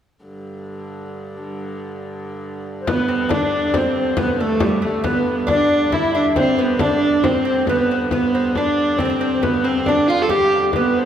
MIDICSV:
0, 0, Header, 1, 6, 480
1, 0, Start_track
1, 0, Key_signature, 1, "major"
1, 0, Tempo, 437637
1, 268, Time_signature, 3, 2, 24, 8
1, 12121, End_track
2, 0, Start_track
2, 0, Title_t, "Recorder"
2, 0, Program_c, 0, 74
2, 3083, Note_on_c, 0, 72, 44
2, 3159, Note_on_c, 0, 71, 79
2, 3175, Note_off_c, 0, 72, 0
2, 3632, Note_on_c, 0, 74, 79
2, 3648, Note_off_c, 0, 71, 0
2, 4143, Note_on_c, 0, 72, 75
2, 4160, Note_off_c, 0, 74, 0
2, 4367, Note_off_c, 0, 72, 0
2, 4373, Note_on_c, 0, 72, 63
2, 4586, Note_off_c, 0, 72, 0
2, 4619, Note_on_c, 0, 71, 84
2, 4830, Note_on_c, 0, 69, 74
2, 4847, Note_off_c, 0, 71, 0
2, 5069, Note_on_c, 0, 67, 67
2, 5086, Note_off_c, 0, 69, 0
2, 5283, Note_off_c, 0, 67, 0
2, 5289, Note_on_c, 0, 69, 75
2, 5522, Note_off_c, 0, 69, 0
2, 5534, Note_on_c, 0, 71, 79
2, 5877, Note_off_c, 0, 71, 0
2, 6030, Note_on_c, 0, 74, 98
2, 6477, Note_off_c, 0, 74, 0
2, 6498, Note_on_c, 0, 76, 92
2, 6984, Note_on_c, 0, 72, 81
2, 7000, Note_off_c, 0, 76, 0
2, 7467, Note_off_c, 0, 72, 0
2, 7482, Note_on_c, 0, 74, 86
2, 7700, Note_off_c, 0, 74, 0
2, 7713, Note_on_c, 0, 74, 71
2, 7940, Note_on_c, 0, 72, 71
2, 7957, Note_off_c, 0, 74, 0
2, 8173, Note_off_c, 0, 72, 0
2, 8180, Note_on_c, 0, 72, 76
2, 8408, Note_off_c, 0, 72, 0
2, 8431, Note_on_c, 0, 71, 76
2, 8519, Note_on_c, 0, 72, 63
2, 8535, Note_off_c, 0, 71, 0
2, 8564, Note_on_c, 0, 71, 83
2, 8580, Note_off_c, 0, 72, 0
2, 8900, Note_off_c, 0, 71, 0
2, 8914, Note_on_c, 0, 71, 84
2, 9386, Note_on_c, 0, 74, 74
2, 9403, Note_off_c, 0, 71, 0
2, 9846, Note_on_c, 0, 72, 77
2, 9862, Note_off_c, 0, 74, 0
2, 10257, Note_off_c, 0, 72, 0
2, 10264, Note_on_c, 0, 72, 50
2, 10344, Note_on_c, 0, 71, 78
2, 10360, Note_off_c, 0, 72, 0
2, 10604, Note_off_c, 0, 71, 0
2, 10816, Note_on_c, 0, 74, 69
2, 11045, Note_off_c, 0, 74, 0
2, 11304, Note_on_c, 0, 67, 84
2, 11640, Note_off_c, 0, 67, 0
2, 11799, Note_on_c, 0, 71, 83
2, 12034, Note_on_c, 0, 72, 78
2, 12051, Note_off_c, 0, 71, 0
2, 12121, Note_off_c, 0, 72, 0
2, 12121, End_track
3, 0, Start_track
3, 0, Title_t, "Lute"
3, 0, Program_c, 1, 24
3, 3158, Note_on_c, 1, 59, 65
3, 3379, Note_off_c, 1, 59, 0
3, 3383, Note_on_c, 1, 60, 63
3, 3611, Note_on_c, 1, 62, 70
3, 3634, Note_off_c, 1, 60, 0
3, 4066, Note_off_c, 1, 62, 0
3, 4105, Note_on_c, 1, 60, 73
3, 4576, Note_off_c, 1, 60, 0
3, 4580, Note_on_c, 1, 59, 68
3, 4826, Note_off_c, 1, 59, 0
3, 4831, Note_on_c, 1, 57, 66
3, 5047, Note_on_c, 1, 55, 65
3, 5078, Note_off_c, 1, 57, 0
3, 5285, Note_on_c, 1, 57, 66
3, 5307, Note_off_c, 1, 55, 0
3, 5520, Note_off_c, 1, 57, 0
3, 5525, Note_on_c, 1, 59, 77
3, 5872, Note_off_c, 1, 59, 0
3, 5997, Note_on_c, 1, 62, 76
3, 6491, Note_off_c, 1, 62, 0
3, 6496, Note_on_c, 1, 64, 68
3, 6738, Note_off_c, 1, 64, 0
3, 6743, Note_on_c, 1, 62, 76
3, 6984, Note_on_c, 1, 60, 77
3, 6994, Note_off_c, 1, 62, 0
3, 7218, Note_off_c, 1, 60, 0
3, 7223, Note_on_c, 1, 59, 67
3, 7464, Note_on_c, 1, 62, 74
3, 7474, Note_off_c, 1, 59, 0
3, 7945, Note_on_c, 1, 60, 69
3, 7961, Note_off_c, 1, 62, 0
3, 8158, Note_off_c, 1, 60, 0
3, 8171, Note_on_c, 1, 60, 74
3, 8403, Note_off_c, 1, 60, 0
3, 8439, Note_on_c, 1, 59, 82
3, 8674, Note_off_c, 1, 59, 0
3, 8678, Note_on_c, 1, 60, 63
3, 8906, Note_off_c, 1, 60, 0
3, 8910, Note_on_c, 1, 59, 81
3, 9133, Note_off_c, 1, 59, 0
3, 9155, Note_on_c, 1, 60, 69
3, 9399, Note_off_c, 1, 60, 0
3, 9403, Note_on_c, 1, 62, 68
3, 9872, Note_on_c, 1, 60, 76
3, 9890, Note_off_c, 1, 62, 0
3, 9915, Note_off_c, 1, 60, 0
3, 9929, Note_on_c, 1, 60, 67
3, 9964, Note_off_c, 1, 60, 0
3, 9977, Note_on_c, 1, 60, 72
3, 10087, Note_off_c, 1, 60, 0
3, 10101, Note_on_c, 1, 60, 78
3, 10333, Note_off_c, 1, 60, 0
3, 10338, Note_on_c, 1, 59, 75
3, 10573, Note_off_c, 1, 59, 0
3, 10577, Note_on_c, 1, 60, 75
3, 10830, Note_off_c, 1, 60, 0
3, 10840, Note_on_c, 1, 62, 79
3, 11072, Note_off_c, 1, 62, 0
3, 11077, Note_on_c, 1, 65, 85
3, 11291, Note_on_c, 1, 67, 86
3, 11319, Note_off_c, 1, 65, 0
3, 11633, Note_off_c, 1, 67, 0
3, 11799, Note_on_c, 1, 59, 76
3, 12121, Note_off_c, 1, 59, 0
3, 12121, End_track
4, 0, Start_track
4, 0, Title_t, "Viola da gamba"
4, 0, Program_c, 2, 42
4, 3171, Note_on_c, 2, 59, 78
4, 3665, Note_on_c, 2, 62, 76
4, 3682, Note_off_c, 2, 59, 0
4, 4135, Note_on_c, 2, 60, 72
4, 4152, Note_off_c, 2, 62, 0
4, 4603, Note_off_c, 2, 60, 0
4, 4616, Note_on_c, 2, 59, 71
4, 4764, Note_off_c, 2, 59, 0
4, 4771, Note_on_c, 2, 59, 52
4, 4842, Note_on_c, 2, 57, 80
4, 4858, Note_off_c, 2, 59, 0
4, 5095, Note_on_c, 2, 55, 70
4, 5111, Note_off_c, 2, 57, 0
4, 5316, Note_on_c, 2, 57, 75
4, 5333, Note_off_c, 2, 55, 0
4, 5553, Note_off_c, 2, 57, 0
4, 5571, Note_on_c, 2, 59, 79
4, 5897, Note_off_c, 2, 59, 0
4, 6032, Note_on_c, 2, 62, 84
4, 6503, Note_on_c, 2, 64, 82
4, 6519, Note_off_c, 2, 62, 0
4, 6743, Note_off_c, 2, 64, 0
4, 6750, Note_on_c, 2, 62, 79
4, 6858, Note_off_c, 2, 62, 0
4, 7010, Note_on_c, 2, 60, 86
4, 7247, Note_on_c, 2, 59, 78
4, 7263, Note_off_c, 2, 60, 0
4, 7491, Note_on_c, 2, 62, 83
4, 7507, Note_off_c, 2, 59, 0
4, 7954, Note_on_c, 2, 60, 76
4, 7971, Note_off_c, 2, 62, 0
4, 8425, Note_off_c, 2, 60, 0
4, 8431, Note_on_c, 2, 59, 76
4, 8877, Note_off_c, 2, 59, 0
4, 8910, Note_on_c, 2, 59, 84
4, 9381, Note_on_c, 2, 62, 84
4, 9398, Note_off_c, 2, 59, 0
4, 9855, Note_on_c, 2, 60, 78
4, 9872, Note_off_c, 2, 62, 0
4, 10334, Note_on_c, 2, 59, 90
4, 10351, Note_off_c, 2, 60, 0
4, 10572, Note_on_c, 2, 60, 86
4, 10589, Note_off_c, 2, 59, 0
4, 10817, Note_on_c, 2, 62, 87
4, 10833, Note_off_c, 2, 60, 0
4, 11053, Note_on_c, 2, 65, 94
4, 11069, Note_off_c, 2, 62, 0
4, 11209, Note_on_c, 2, 69, 65
4, 11226, Note_off_c, 2, 65, 0
4, 11297, Note_on_c, 2, 67, 90
4, 11313, Note_off_c, 2, 69, 0
4, 11662, Note_off_c, 2, 67, 0
4, 11790, Note_on_c, 2, 59, 88
4, 12121, Note_off_c, 2, 59, 0
4, 12121, End_track
5, 0, Start_track
5, 0, Title_t, "Hurdy-gurdy"
5, 0, Program_c, 3, 110
5, 263, Note_on_c, 3, 43, 59
5, 271, Note_on_c, 3, 50, 59
5, 3139, Note_off_c, 3, 43, 0
5, 3139, Note_on_c, 3, 43, 68
5, 3142, Note_off_c, 3, 50, 0
5, 3142, Note_on_c, 3, 50, 65
5, 8901, Note_off_c, 3, 50, 0
5, 8901, Note_on_c, 3, 50, 71
5, 8905, Note_off_c, 3, 43, 0
5, 8905, Note_on_c, 3, 43, 70
5, 12121, Note_off_c, 3, 43, 0
5, 12121, Note_off_c, 3, 50, 0
5, 12121, End_track
6, 0, Start_track
6, 0, Title_t, "Frame drum"
6, 3152, Note_on_c, 9, 64, 94
6, 3262, Note_off_c, 9, 64, 0
6, 3394, Note_on_c, 9, 64, 27
6, 3504, Note_off_c, 9, 64, 0
6, 3624, Note_on_c, 9, 64, 90
6, 3734, Note_off_c, 9, 64, 0
6, 3867, Note_on_c, 9, 64, 27
6, 3977, Note_off_c, 9, 64, 0
6, 4100, Note_on_c, 9, 64, 84
6, 4210, Note_off_c, 9, 64, 0
6, 4345, Note_on_c, 9, 64, 32
6, 4455, Note_off_c, 9, 64, 0
6, 4571, Note_on_c, 9, 64, 98
6, 4681, Note_off_c, 9, 64, 0
6, 4824, Note_on_c, 9, 64, 29
6, 4934, Note_off_c, 9, 64, 0
6, 5050, Note_on_c, 9, 64, 93
6, 5159, Note_off_c, 9, 64, 0
6, 5301, Note_on_c, 9, 64, 26
6, 5410, Note_off_c, 9, 64, 0
6, 5530, Note_on_c, 9, 64, 81
6, 5640, Note_off_c, 9, 64, 0
6, 5777, Note_on_c, 9, 64, 26
6, 5887, Note_off_c, 9, 64, 0
6, 6011, Note_on_c, 9, 64, 78
6, 6121, Note_off_c, 9, 64, 0
6, 6258, Note_on_c, 9, 64, 25
6, 6368, Note_off_c, 9, 64, 0
6, 6495, Note_on_c, 9, 64, 75
6, 6605, Note_off_c, 9, 64, 0
6, 6740, Note_on_c, 9, 64, 26
6, 6849, Note_off_c, 9, 64, 0
6, 6976, Note_on_c, 9, 64, 76
6, 7085, Note_off_c, 9, 64, 0
6, 7219, Note_on_c, 9, 64, 28
6, 7328, Note_off_c, 9, 64, 0
6, 7450, Note_on_c, 9, 64, 91
6, 7560, Note_off_c, 9, 64, 0
6, 7698, Note_on_c, 9, 64, 27
6, 7808, Note_off_c, 9, 64, 0
6, 7938, Note_on_c, 9, 64, 83
6, 8048, Note_off_c, 9, 64, 0
6, 8413, Note_on_c, 9, 64, 76
6, 8523, Note_off_c, 9, 64, 0
6, 8895, Note_on_c, 9, 64, 74
6, 9005, Note_off_c, 9, 64, 0
6, 9135, Note_on_c, 9, 64, 23
6, 9245, Note_off_c, 9, 64, 0
6, 9380, Note_on_c, 9, 64, 71
6, 9490, Note_off_c, 9, 64, 0
6, 9626, Note_on_c, 9, 64, 24
6, 9736, Note_off_c, 9, 64, 0
6, 9856, Note_on_c, 9, 64, 72
6, 9965, Note_off_c, 9, 64, 0
6, 10098, Note_on_c, 9, 64, 24
6, 10208, Note_off_c, 9, 64, 0
6, 10342, Note_on_c, 9, 64, 74
6, 10452, Note_off_c, 9, 64, 0
6, 10577, Note_on_c, 9, 64, 22
6, 10686, Note_off_c, 9, 64, 0
6, 10816, Note_on_c, 9, 64, 75
6, 10926, Note_off_c, 9, 64, 0
6, 11057, Note_on_c, 9, 64, 24
6, 11166, Note_off_c, 9, 64, 0
6, 11287, Note_on_c, 9, 64, 66
6, 11397, Note_off_c, 9, 64, 0
6, 11534, Note_on_c, 9, 64, 24
6, 11644, Note_off_c, 9, 64, 0
6, 11769, Note_on_c, 9, 64, 71
6, 11878, Note_off_c, 9, 64, 0
6, 12121, End_track
0, 0, End_of_file